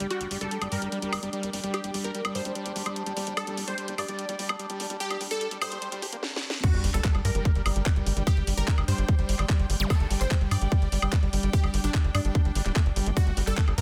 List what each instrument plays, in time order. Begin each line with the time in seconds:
Already playing: synth drone G3 G4, string section D4 G4 D5 G5
0.00 analog synth bass G1, acid bass G3, closed hi-hat
0.11 acid bass G3, synth drone D4, supersaw synth F#4, closed hi-hat
0.21 analog synth bass G1, acid bass G3, closed hi-hat
0.31 analog synth bass G1, acid bass G3, open hi-hat
0.41 analog synth bass G1, acid bass G3, supersaw synth A4, closed hi-hat
0.51 acid bass G3, closed hi-hat
0.62 analog synth bass G1, acid bass G3, closed hi-hat, high woodblock
0.72 analog synth bass G2, acid bass G3, supersaw synth A#4, open hi-hat
0.82 analog synth bass G1, acid bass G3, closed hi-hat
0.92 acid bass G3, closed hi-hat
1.02 analog synth bass G1, acid bass G3, closed hi-hat
1.13 analog synth bass G1, acid bass G3, open hi-hat, high woodblock
1.23 analog synth bass G1, acid bass G3, closed hi-hat
1.33 acid bass G3, closed hi-hat
1.43 analog synth bass G1, acid bass G3, closed hi-hat
1.53 analog synth bass G1, acid bass G3, open hi-hat
1.64 analog synth bass G1, acid bass G3, closed hi-hat
1.74 acid bass G3, supersaw synth G4, closed hi-hat, high woodblock
1.84 analog synth bass G1, acid bass G3, closed hi-hat
1.94 analog synth bass G1, acid bass G3, open hi-hat
2.04 analog synth bass G1, acid bass G3, supersaw synth A#4, closed hi-hat
2.15 acid bass G3, closed hi-hat
2.25 analog synth bass G1, acid bass G3, closed hi-hat, high woodblock
2.35 analog synth bass G2, acid bass G3, supersaw synth C5, open hi-hat
2.45 analog synth bass G1, acid bass G3, closed hi-hat
2.55 acid bass G3, closed hi-hat
2.66 analog synth bass G1, acid bass G3, closed hi-hat
2.76 analog synth bass G1, acid bass G3, open hi-hat
2.86 analog synth bass G1, acid bass G3, closed hi-hat, high woodblock
2.96 acid bass G3, closed hi-hat
3.06 analog synth bass G1, acid bass G3, closed hi-hat
3.17 analog synth bass G1, acid bass G3, open hi-hat
3.27 analog synth bass G1, acid bass G3, closed hi-hat
3.37 acid bass G3, supersaw synth A4, closed hi-hat, high woodblock
3.47 analog synth bass G1, acid bass G3, closed hi-hat
3.57 analog synth bass G1, acid bass G3, open hi-hat
3.68 analog synth bass G1, acid bass G3, supersaw synth C5, closed hi-hat
3.78 acid bass G3, closed hi-hat
3.88 analog synth bass G1, acid bass G3, closed hi-hat
3.98 analog synth bass G2, acid bass G3, supersaw synth D5, open hi-hat, high woodblock
4.08 analog synth bass G1, acid bass G3, closed hi-hat
4.19 acid bass G3, closed hi-hat
4.29 analog synth bass G1, acid bass G3, closed hi-hat
4.39 analog synth bass G1, acid bass G3, open hi-hat
4.49 analog synth bass G1, acid bass G3, closed hi-hat, high woodblock
4.59 acid bass G3, closed hi-hat
4.70 analog synth bass G1, acid bass G3, closed hi-hat
4.80 analog synth bass G1, acid bass G3, open hi-hat
4.90 analog synth bass G1, acid bass G3, closed hi-hat
5.00 acid bass G3, supersaw synth G4, closed hi-hat
5.10 analog synth bass G1, acid bass G3, closed hi-hat, high woodblock
5.21 analog synth bass G1, acid bass G3, open hi-hat
5.31 analog synth bass G1, acid bass G3, supersaw synth A4, closed hi-hat
5.41 acid bass G3, closed hi-hat
5.51 analog synth bass G1, acid bass G3, closed hi-hat
5.62 analog synth bass G2, acid bass G3, supersaw synth C5, open hi-hat, high woodblock
5.72 analog synth bass G1, acid bass G3, closed hi-hat
5.82 acid bass G3, closed hi-hat
5.92 analog synth bass G1, acid bass G3, closed hi-hat
6.02 analog synth bass G1, acid bass G4, open hi-hat
6.13 analog synth bass D1, acid bass A#3, closed hi-hat
6.23 snare
6.36 snare
6.50 snare
6.64 acid bass G3, string section D4, supersaw synth F#4, kick, closed hi-hat, crash, sub drop
6.72 analog synth bass G1, string section G3, acid bass G3, closed hi-hat
6.84 analog synth bass G1, acid bass G3, open hi-hat
6.94 analog synth bass G1, acid bass G3, supersaw synth A4, clap, closed hi-hat
7.04 acid bass G3, string section D5, kick, clap, closed hi-hat
7.15 analog synth bass G1, acid bass G3, closed hi-hat, high woodblock
7.21 analog synth bass G2, acid bass G3, supersaw synth A#4, string section G5, open hi-hat
7.35 analog synth bass G1, acid bass G3, closed hi-hat
7.45 acid bass G3, kick, closed hi-hat
7.55 analog synth bass G1, acid bass G3, closed hi-hat
7.66 analog synth bass G1, acid bass G3, open hi-hat, high woodblock
7.76 analog synth bass G1, acid bass G3, closed hi-hat
7.86 kick, clap, closed hi-hat
7.96 analog synth bass G1, acid bass G3, closed hi-hat
8.06 analog synth bass G1, acid bass G3, open hi-hat
8.17 analog synth bass G1, acid bass G3, closed hi-hat
8.27 acid bass G3, supersaw synth G4, kick, closed hi-hat, high woodblock
8.37 analog synth bass G1, acid bass G3, closed hi-hat
8.47 analog synth bass G1, acid bass G3, open hi-hat
8.57 analog synth bass G1, acid bass G3, supersaw synth A#4, closed hi-hat
8.68 kick, clap, closed hi-hat
8.78 analog synth bass G1, acid bass G3, closed hi-hat, high woodblock
8.88 analog synth bass G2, acid bass G3, supersaw synth C5, open hi-hat
8.98 analog synth bass G1, acid bass G3, closed hi-hat
9.08 acid bass G3, kick, closed hi-hat
9.19 analog synth bass G1, acid bass G3, closed hi-hat
9.29 analog synth bass G1, acid bass G3, open hi-hat
9.39 analog synth bass G1, acid bass G3, clap, closed hi-hat, high woodblock
9.49 acid bass G3, kick, clap, closed hi-hat
9.60 analog synth bass G1, acid bass G3, closed hi-hat
9.70 analog synth bass G1, acid bass G3, open hi-hat
9.80 analog synth bass G1, acid bass G3, closed hi-hat, zap
9.90 acid bass G3, supersaw synth A4, kick, closed hi-hat, high woodblock
10.00 analog synth bass G1, acid bass G3, closed hi-hat
10.11 analog synth bass G1, acid bass G3, open hi-hat
10.21 analog synth bass G1, acid bass G3, supersaw synth C5, clap, closed hi-hat
10.31 acid bass G3, kick, clap, closed hi-hat
10.41 analog synth bass G1, acid bass G3, closed hi-hat
10.51 analog synth bass G2, acid bass G3, supersaw synth D5, open hi-hat, high woodblock
10.62 analog synth bass G1, acid bass G3, closed hi-hat
10.72 acid bass G3, kick, closed hi-hat
10.82 analog synth bass G1, acid bass G3, closed hi-hat
10.92 analog synth bass G1, acid bass G3, open hi-hat
11.02 analog synth bass G1, acid bass G3, closed hi-hat, high woodblock
11.13 acid bass G3, kick, clap, closed hi-hat
11.23 analog synth bass G1, acid bass G3, closed hi-hat
11.33 analog synth bass G1, acid bass G3, open hi-hat
11.43 analog synth bass G1, acid bass G3, closed hi-hat
11.53 acid bass G3, supersaw synth G4, kick, closed hi-hat
11.64 analog synth bass G1, acid bass G3, closed hi-hat, high woodblock
11.74 analog synth bass G1, acid bass G3, open hi-hat
11.84 analog synth bass G1, acid bass G3, supersaw synth D4, closed hi-hat
11.94 acid bass G3, kick, clap, closed hi-hat
12.04 analog synth bass G1, acid bass G3, closed hi-hat
12.15 analog synth bass G2, acid bass G3, supersaw synth D4, open hi-hat, high woodblock
12.25 analog synth bass G1, acid bass G3, closed hi-hat
12.35 kick, closed hi-hat
12.45 analog synth bass G1, acid bass G3, closed hi-hat
12.55 analog synth bass G1, acid bass G3, open hi-hat
12.66 analog synth bass D1, acid bass G3, clap, closed hi-hat
12.76 acid bass A3, kick, clap, closed hi-hat, high woodblock
12.86 analog synth bass G1, closed hi-hat
12.96 analog synth bass G1, acid bass G3, open hi-hat
13.06 analog synth bass G1, acid bass A3, closed hi-hat
13.17 acid bass G3, supersaw synth F#4, kick, closed hi-hat
13.27 analog synth bass G1, acid bass A3, closed hi-hat
13.37 analog synth bass G1, acid bass G3, open hi-hat
13.47 analog synth bass G1, acid bass G3, supersaw synth A4, clap, closed hi-hat
13.57 acid bass A3, kick, clap, closed hi-hat
13.68 analog synth bass G1, acid bass G3, closed hi-hat, high woodblock
13.74 analog synth bass G2, acid bass G3, supersaw synth A#4, string section A#5, open hi-hat